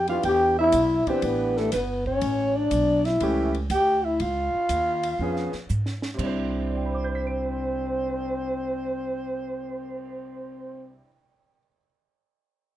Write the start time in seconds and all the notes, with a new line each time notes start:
Already playing: F2
0.08 E3 B3 D4 F4 G4 F5, ride
0.23 E2 G4 G5, ride
0.59 E4 E5
0.72 B1, hi-hat pedal, ride
1.07 E3 B3 C4 D4 G4 C5, muted upright bass stroke, kick, ride
1.22 A1 B3 B4, ride
1.57 A3 A4, snare
1.72 G1 B3 B4, snare, hi-hat pedal, ride
2.06 C#4 C#5, kick
2.21 A1, ride
2.56 D4 D5
2.71 B1, hi-hat pedal, ride
3.05 E4 E5, snare, ride
3.20 C#2 E3 A3 C#4 G4, ride
3.55 ride
3.70 D2 G4 G5, hi-hat pedal, ride
4.05 E4 E5
4.20 C#2 F4 F5, ride
4.69 D#2, hi-hat pedal, ride
5.03 ride
5.19 F2 F3 B3 C#4 G#4
5.36 snare
5.52 muted upright bass stroke, snare
5.69 G#2, hi-hat pedal
5.86 snare
6.02 snare
6.14 C3 C4
6.19 C2 C4 D4 C5, kick, crash
6.23 E4 C5
6.53 cymbal swell
6.70 D5
6.77 G5
6.86 B5
6.94 D6
7.04 G6
7.15 B6
7.27 D7